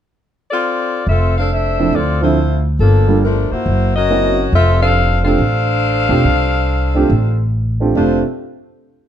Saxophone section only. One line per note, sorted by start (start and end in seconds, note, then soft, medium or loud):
0.51 1.04 C4 medium
0.51 1.04 F4 medium
0.51 1.04 A4 medium
0.51 1.04 D5 medium
1.09 1.37 C4 medium
1.09 1.37 F4 medium
1.09 1.36 A4 medium
1.09 1.37 E5 medium
1.38 1.51 D4 medium
1.38 1.51 A4 medium
1.38 1.51 C5 medium
1.38 1.51 F5 medium
1.52 1.95 D4 medium
1.52 1.93 A4 medium
1.52 1.95 C5 medium
1.52 1.95 E5 medium
1.94 2.22 C4 medium
1.94 2.22 F4 medium
1.94 2.22 A4 medium
1.94 2.22 D5 medium
2.23 2.63 A3 medium
2.23 2.63 E4 medium
2.23 2.63 F4 medium
2.23 2.63 C5 medium
2.80 3.20 F3 medium
2.80 3.20 A#3 medium
2.80 3.20 D4 medium
2.80 3.21 A4 medium
3.24 3.50 F3 medium
3.24 3.50 A3 medium
3.24 3.50 D4 medium
3.24 3.50 A#4 medium
3.51 3.95 A#3 medium
3.51 3.95 E4 medium
3.51 3.95 F#4 medium
3.51 3.95 C5 medium
3.96 4.49 C#4 medium
3.96 4.50 F#4 medium
3.96 4.50 A#4 medium
3.96 4.49 D#5 medium
4.53 4.79 C4 medium
4.53 4.79 F4 medium
4.53 4.79 A4 medium
4.53 4.79 E5 medium
4.81 5.21 D4 medium
4.81 5.21 A4 medium
4.81 5.21 C5 medium
4.81 5.21 F5 medium
5.25 7.49 D4 medium
5.25 7.49 A4 medium
5.25 7.49 C5 medium
5.25 7.49 F5 loud
7.96 8.22 A3 medium
7.96 8.22 D4 medium
7.96 8.22 F4 medium
7.96 8.22 C5 medium